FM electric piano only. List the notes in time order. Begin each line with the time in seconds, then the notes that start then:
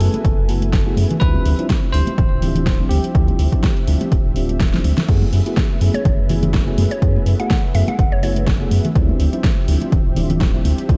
0.00 A3 B3 E4 F#4 G#4
0.48 A3 B3 E4 F#4 A4
0.86 A3 B3 E4 F#4 G#4
1.21 F3 G3 C4 D4 E4
1.58 F3 G3 C4 D4 E4
1.94 F3 G3 C4 D4 E4
2.42 F3 G3 C4 D4 E4
2.79 F3 G3 C4 D4 E4
3.14 F3 G3 C4 D4 E4
3.52 F3 G3 C4 D4 E4
3.87 F3 G3 C4 D4 E4
4.36 F3 G3 C4 D4 F4
4.73 F3 G3 C4 D4 E4
5.08 A3 B3 E4 F#4 G#4
5.46 A3 B3 E4 F#4 G#4
5.81 A3 B3 E4 F#4 G#4
6.29 A3 B3 E4 F#4 G#4
6.67 A3 B3 E4 F#4 G#4
7.02 A3 B3 E4 F#4 G#4
7.39 A3 B3 E4 F#4 G#4
7.74 A3 B3 E4 F#4 G#4
8.23 A3 B3 E4 F#4 G#4
8.60 A3 B3 E4 F#4 G#4
8.95 F3 G3 C4 D4 E4
9.33 F3 G3 C4 D4 E4
9.68 F3 G3 C4 D4 E4
10.16 F3 G3 C4 D4 E4
10.54 F3 G3 C4 D4 E4
10.89 F3 G3 C4 D4 E4